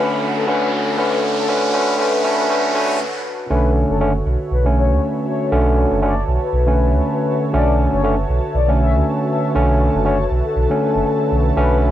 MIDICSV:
0, 0, Header, 1, 8, 480
1, 0, Start_track
1, 0, Key_signature, 2, "minor"
1, 0, Tempo, 504202
1, 1414, Time_signature, 4, 2, 24, 8
1, 11340, End_track
2, 0, Start_track
2, 0, Title_t, "Violin section"
2, 0, Program_c, 0, 48
2, 0, Note_on_c, 0, 83, 81
2, 2854, Note_off_c, 0, 83, 0
2, 11340, End_track
3, 0, Start_track
3, 0, Title_t, "Ambient pad"
3, 0, Program_c, 1, 92
3, 0, Note_on_c, 1, 66, 66
3, 0, Note_on_c, 1, 71, 84
3, 0, Note_on_c, 1, 78, 80
3, 0, Note_on_c, 1, 81, 80
3, 2854, Note_off_c, 1, 66, 0
3, 2854, Note_off_c, 1, 71, 0
3, 2854, Note_off_c, 1, 78, 0
3, 2854, Note_off_c, 1, 81, 0
3, 3335, Note_on_c, 1, 66, 74
3, 3504, Note_on_c, 1, 71, 76
3, 3664, Note_on_c, 1, 76, 82
3, 4066, Note_on_c, 1, 81, 79
3, 11340, Note_off_c, 1, 66, 0
3, 11340, Note_off_c, 1, 71, 0
3, 11340, Note_off_c, 1, 76, 0
3, 11340, Note_off_c, 1, 81, 0
3, 11340, End_track
4, 0, Start_track
4, 0, Title_t, "Soft synth lead"
4, 0, Program_c, 2, 80
4, 0, Note_on_c, 2, 71, 99
4, 167, Note_off_c, 2, 71, 0
4, 348, Note_on_c, 2, 69, 93
4, 437, Note_off_c, 2, 69, 0
4, 454, Note_on_c, 2, 71, 97
4, 646, Note_off_c, 2, 71, 0
4, 828, Note_on_c, 2, 69, 97
4, 917, Note_off_c, 2, 69, 0
4, 934, Note_on_c, 2, 71, 105
4, 1127, Note_off_c, 2, 71, 0
4, 1309, Note_on_c, 2, 69, 97
4, 1398, Note_off_c, 2, 69, 0
4, 1415, Note_on_c, 2, 71, 96
4, 1607, Note_off_c, 2, 71, 0
4, 1654, Note_on_c, 2, 71, 106
4, 1846, Note_off_c, 2, 71, 0
4, 1894, Note_on_c, 2, 71, 101
4, 2087, Note_off_c, 2, 71, 0
4, 2134, Note_on_c, 2, 71, 104
4, 2326, Note_off_c, 2, 71, 0
4, 2375, Note_on_c, 2, 71, 103
4, 2567, Note_off_c, 2, 71, 0
4, 2615, Note_on_c, 2, 71, 102
4, 2807, Note_off_c, 2, 71, 0
4, 3335, Note_on_c, 2, 71, 95
4, 3527, Note_off_c, 2, 71, 0
4, 3709, Note_on_c, 2, 69, 96
4, 3888, Note_off_c, 2, 69, 0
4, 4294, Note_on_c, 2, 71, 87
4, 4432, Note_off_c, 2, 71, 0
4, 4534, Note_on_c, 2, 73, 95
4, 4783, Note_off_c, 2, 73, 0
4, 5015, Note_on_c, 2, 73, 91
4, 5207, Note_off_c, 2, 73, 0
4, 5734, Note_on_c, 2, 74, 96
4, 5927, Note_off_c, 2, 74, 0
4, 6107, Note_on_c, 2, 71, 103
4, 7089, Note_off_c, 2, 71, 0
4, 7173, Note_on_c, 2, 74, 102
4, 7366, Note_off_c, 2, 74, 0
4, 7547, Note_on_c, 2, 73, 100
4, 7727, Note_off_c, 2, 73, 0
4, 8134, Note_on_c, 2, 74, 87
4, 8272, Note_off_c, 2, 74, 0
4, 8373, Note_on_c, 2, 76, 96
4, 8623, Note_off_c, 2, 76, 0
4, 8853, Note_on_c, 2, 76, 91
4, 9046, Note_off_c, 2, 76, 0
4, 9572, Note_on_c, 2, 73, 98
4, 9766, Note_off_c, 2, 73, 0
4, 9947, Note_on_c, 2, 69, 101
4, 10929, Note_off_c, 2, 69, 0
4, 11012, Note_on_c, 2, 71, 98
4, 11206, Note_off_c, 2, 71, 0
4, 11340, End_track
5, 0, Start_track
5, 0, Title_t, "Analog synth pad"
5, 0, Program_c, 3, 89
5, 0, Note_on_c, 3, 50, 77
5, 0, Note_on_c, 3, 66, 71
5, 0, Note_on_c, 3, 69, 69
5, 0, Note_on_c, 3, 71, 83
5, 3296, Note_off_c, 3, 50, 0
5, 3296, Note_off_c, 3, 66, 0
5, 3296, Note_off_c, 3, 69, 0
5, 3296, Note_off_c, 3, 71, 0
5, 3334, Note_on_c, 3, 50, 75
5, 3334, Note_on_c, 3, 66, 71
5, 3334, Note_on_c, 3, 73, 90
5, 3335, Note_on_c, 3, 69, 71
5, 11003, Note_off_c, 3, 73, 0
5, 11013, Note_on_c, 3, 71, 90
5, 11340, Note_off_c, 3, 50, 0
5, 11340, Note_off_c, 3, 66, 0
5, 11340, Note_off_c, 3, 69, 0
5, 11340, Note_off_c, 3, 71, 0
5, 11340, End_track
6, 0, Start_track
6, 0, Title_t, "Tine electric piano"
6, 0, Program_c, 4, 4
6, 0, Note_on_c, 4, 50, 95
6, 0, Note_on_c, 4, 57, 83
6, 0, Note_on_c, 4, 61, 107
6, 427, Note_off_c, 4, 50, 0
6, 428, Note_off_c, 4, 57, 0
6, 430, Note_off_c, 4, 61, 0
6, 450, Note_on_c, 4, 50, 100
6, 453, Note_on_c, 4, 57, 90
6, 456, Note_on_c, 4, 61, 108
6, 907, Note_off_c, 4, 50, 0
6, 908, Note_off_c, 4, 57, 0
6, 910, Note_off_c, 4, 61, 0
6, 930, Note_on_c, 4, 50, 94
6, 933, Note_on_c, 4, 57, 90
6, 936, Note_on_c, 4, 61, 105
6, 1387, Note_off_c, 4, 50, 0
6, 1388, Note_off_c, 4, 57, 0
6, 1390, Note_off_c, 4, 61, 0
6, 1410, Note_on_c, 4, 50, 99
6, 1413, Note_on_c, 4, 57, 92
6, 1416, Note_on_c, 4, 61, 104
6, 1635, Note_off_c, 4, 50, 0
6, 1637, Note_off_c, 4, 57, 0
6, 1638, Note_off_c, 4, 61, 0
6, 1650, Note_on_c, 4, 50, 101
6, 1652, Note_on_c, 4, 57, 91
6, 1656, Note_on_c, 4, 61, 106
6, 1875, Note_off_c, 4, 50, 0
6, 1876, Note_off_c, 4, 57, 0
6, 1878, Note_off_c, 4, 61, 0
6, 1889, Note_on_c, 4, 50, 99
6, 1892, Note_on_c, 4, 57, 91
6, 1896, Note_on_c, 4, 61, 109
6, 2115, Note_off_c, 4, 50, 0
6, 2116, Note_off_c, 4, 57, 0
6, 2118, Note_off_c, 4, 61, 0
6, 2131, Note_on_c, 4, 50, 98
6, 2133, Note_on_c, 4, 57, 92
6, 2136, Note_on_c, 4, 61, 114
6, 2355, Note_off_c, 4, 50, 0
6, 2357, Note_off_c, 4, 57, 0
6, 2358, Note_off_c, 4, 61, 0
6, 2370, Note_on_c, 4, 50, 102
6, 2373, Note_on_c, 4, 57, 93
6, 2376, Note_on_c, 4, 61, 111
6, 2595, Note_off_c, 4, 50, 0
6, 2597, Note_off_c, 4, 57, 0
6, 2598, Note_off_c, 4, 61, 0
6, 2610, Note_on_c, 4, 50, 100
6, 2614, Note_on_c, 4, 57, 97
6, 2616, Note_on_c, 4, 61, 114
6, 2835, Note_off_c, 4, 50, 0
6, 2837, Note_off_c, 4, 57, 0
6, 2838, Note_off_c, 4, 61, 0
6, 3331, Note_on_c, 4, 50, 99
6, 3334, Note_on_c, 4, 57, 91
6, 3337, Note_on_c, 4, 61, 103
6, 3787, Note_off_c, 4, 50, 0
6, 3789, Note_off_c, 4, 57, 0
6, 3790, Note_off_c, 4, 61, 0
6, 3811, Note_on_c, 4, 50, 86
6, 3814, Note_on_c, 4, 57, 81
6, 3817, Note_on_c, 4, 61, 96
6, 3918, Note_off_c, 4, 50, 0
6, 3919, Note_off_c, 4, 57, 0
6, 3921, Note_off_c, 4, 61, 0
6, 4422, Note_on_c, 4, 50, 86
6, 4429, Note_on_c, 4, 57, 80
6, 4435, Note_on_c, 4, 61, 98
6, 5226, Note_off_c, 4, 50, 0
6, 5229, Note_off_c, 4, 57, 0
6, 5232, Note_off_c, 4, 61, 0
6, 5251, Note_on_c, 4, 50, 100
6, 5254, Note_on_c, 4, 57, 91
6, 5257, Note_on_c, 4, 61, 108
6, 5707, Note_off_c, 4, 50, 0
6, 5709, Note_off_c, 4, 57, 0
6, 5710, Note_off_c, 4, 61, 0
6, 5731, Note_on_c, 4, 50, 88
6, 5734, Note_on_c, 4, 57, 79
6, 5738, Note_on_c, 4, 61, 90
6, 5838, Note_off_c, 4, 50, 0
6, 5839, Note_off_c, 4, 57, 0
6, 5841, Note_off_c, 4, 61, 0
6, 6343, Note_on_c, 4, 50, 84
6, 6349, Note_on_c, 4, 57, 75
6, 6355, Note_on_c, 4, 61, 94
6, 7146, Note_off_c, 4, 50, 0
6, 7149, Note_off_c, 4, 57, 0
6, 7152, Note_off_c, 4, 61, 0
6, 7170, Note_on_c, 4, 50, 100
6, 7173, Note_on_c, 4, 57, 88
6, 7176, Note_on_c, 4, 61, 105
6, 7627, Note_off_c, 4, 50, 0
6, 7628, Note_off_c, 4, 57, 0
6, 7630, Note_off_c, 4, 61, 0
6, 7650, Note_on_c, 4, 50, 89
6, 7653, Note_on_c, 4, 57, 78
6, 7657, Note_on_c, 4, 61, 92
6, 7757, Note_off_c, 4, 50, 0
6, 7759, Note_off_c, 4, 57, 0
6, 7760, Note_off_c, 4, 61, 0
6, 8261, Note_on_c, 4, 50, 84
6, 8267, Note_on_c, 4, 57, 81
6, 8274, Note_on_c, 4, 61, 98
6, 9065, Note_off_c, 4, 50, 0
6, 9068, Note_off_c, 4, 57, 0
6, 9071, Note_off_c, 4, 61, 0
6, 9090, Note_on_c, 4, 50, 92
6, 9093, Note_on_c, 4, 57, 89
6, 9096, Note_on_c, 4, 61, 106
6, 9547, Note_off_c, 4, 50, 0
6, 9548, Note_off_c, 4, 57, 0
6, 9550, Note_off_c, 4, 61, 0
6, 9570, Note_on_c, 4, 50, 84
6, 9573, Note_on_c, 4, 57, 78
6, 9576, Note_on_c, 4, 61, 91
6, 9677, Note_off_c, 4, 50, 0
6, 9679, Note_off_c, 4, 57, 0
6, 9680, Note_off_c, 4, 61, 0
6, 10182, Note_on_c, 4, 50, 87
6, 10188, Note_on_c, 4, 57, 77
6, 10194, Note_on_c, 4, 61, 97
6, 10986, Note_off_c, 4, 50, 0
6, 10988, Note_off_c, 4, 57, 0
6, 10991, Note_off_c, 4, 61, 0
6, 11010, Note_on_c, 4, 50, 94
6, 11013, Note_on_c, 4, 57, 88
6, 11016, Note_on_c, 4, 61, 111
6, 11340, Note_off_c, 4, 50, 0
6, 11340, Note_off_c, 4, 57, 0
6, 11340, Note_off_c, 4, 61, 0
6, 11340, End_track
7, 0, Start_track
7, 0, Title_t, "Sub bass"
7, 0, Program_c, 5, 38
7, 3334, Note_on_c, 5, 35, 94
7, 3652, Note_off_c, 5, 35, 0
7, 3709, Note_on_c, 5, 30, 106
7, 4010, Note_off_c, 5, 30, 0
7, 4054, Note_on_c, 5, 35, 88
7, 4153, Note_off_c, 5, 35, 0
7, 4295, Note_on_c, 5, 35, 106
7, 4669, Note_on_c, 5, 38, 83
7, 4683, Note_off_c, 5, 35, 0
7, 4747, Note_off_c, 5, 38, 0
7, 5254, Note_on_c, 5, 35, 103
7, 5572, Note_off_c, 5, 35, 0
7, 5629, Note_on_c, 5, 30, 108
7, 5930, Note_off_c, 5, 30, 0
7, 5974, Note_on_c, 5, 35, 90
7, 6073, Note_off_c, 5, 35, 0
7, 6214, Note_on_c, 5, 35, 105
7, 6589, Note_on_c, 5, 38, 83
7, 6603, Note_off_c, 5, 35, 0
7, 6667, Note_off_c, 5, 38, 0
7, 7174, Note_on_c, 5, 35, 99
7, 7492, Note_off_c, 5, 35, 0
7, 7549, Note_on_c, 5, 30, 109
7, 7850, Note_off_c, 5, 30, 0
7, 7894, Note_on_c, 5, 35, 89
7, 7993, Note_off_c, 5, 35, 0
7, 8134, Note_on_c, 5, 35, 104
7, 8508, Note_on_c, 5, 38, 85
7, 8523, Note_off_c, 5, 35, 0
7, 8586, Note_off_c, 5, 38, 0
7, 9094, Note_on_c, 5, 35, 101
7, 9412, Note_off_c, 5, 35, 0
7, 9468, Note_on_c, 5, 30, 105
7, 9770, Note_off_c, 5, 30, 0
7, 9814, Note_on_c, 5, 35, 89
7, 9913, Note_off_c, 5, 35, 0
7, 10054, Note_on_c, 5, 35, 103
7, 10153, Note_off_c, 5, 35, 0
7, 10428, Note_on_c, 5, 30, 91
7, 10506, Note_off_c, 5, 30, 0
7, 10773, Note_on_c, 5, 35, 90
7, 10959, Note_off_c, 5, 35, 0
7, 11013, Note_on_c, 5, 35, 100
7, 11332, Note_off_c, 5, 35, 0
7, 11340, End_track
8, 0, Start_track
8, 0, Title_t, "Riser"
8, 0, Program_c, 6, 103
8, 0, Note_on_c, 6, 60, 82
8, 2854, Note_off_c, 6, 60, 0
8, 11340, End_track
0, 0, End_of_file